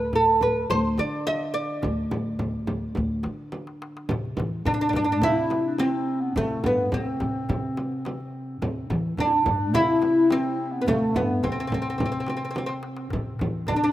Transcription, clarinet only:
4.65 D4
5.08 D4
5.22 E4
5.62 D4 E4
5.79 C4
6.21 B3
6.35 A3
6.64 B3
6.92 B3
7.03 C4
9.18 D4
9.26 E4
9.33 D4
9.42 E4
9.50 D4
9.74 E4
10.30 C4
10.72 B3
10.87 A3
11.15 B3
11.44 C4
12.57 C4
13.69 D4

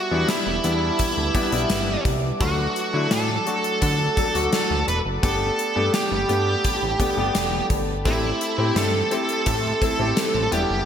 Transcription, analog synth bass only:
0.11 E2
0.47 E1
0.64 E2
1.17 D2
1.52 B1
1.70 G1
2.05 C2
2.41 D2
2.94 D3
3.11 A2
3.82 D3
4.35 D2
4.70 D2
4.88 E1
5.05 F#1
5.23 G1
5.76 G2
6.12 G1
6.29 G2
6.82 A1
7.17 G1
7.35 E1
7.70 G1
8.05 A1
8.58 A2
8.76 G2
9.47 A2
9.99 A1
10.34 A1
10.52 E1
10.70 F#1

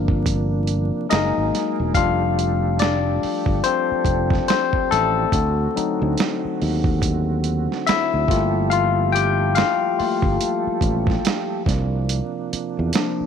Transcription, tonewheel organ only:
Already playing: C3 F3 A#3 D4
1.09 F#3 D#4 G#4 A#4
1.94 F3 D4 G4 A4
5.32 D3 C4 F#4
8.28 F3 G3 G4 A4
11.66 C3 A#3 D4

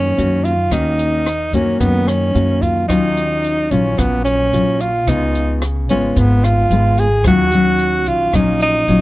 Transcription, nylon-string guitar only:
Already playing: D#3 A#3 C#4 F#4
0.17 A#3 C#4 F#4
0.72 D#3 A#3 C#4 F#4
1.54 A#3 C#4 F#4
1.80 D#3
2.34 A#3 C#4 F#4
2.89 D#3 F#3 C#4 F4
3.71 F#3 C#4 F4
3.99 A#2
4.53 F#3 C#4 F4
5.08 C#3 G#3 B3 F4
5.90 G#3 B3 F4
6.19 G#2
6.71 G#3 B3 F4
7.26 D#3 F#3 C#4 F4
7.54 F#3 C#4
8.34 A#2 F#3 C#4 F4
8.89 F#3 C#4 F4

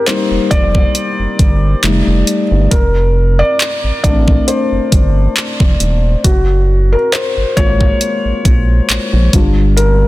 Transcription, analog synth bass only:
0.31 F1
0.51 F1
1.19 G1
1.39 G1
1.83 F1
2.07 F1
2.51 G1
2.72 F1
3.84 A1
4.04 A1
4.72 G1
4.92 G1
5.60 F1
5.80 D#1
6.25 F#1
7.37 G#1
7.57 G#1
8.25 A#1
8.45 A#1
8.89 A#1
9.13 A#1
9.33 G1

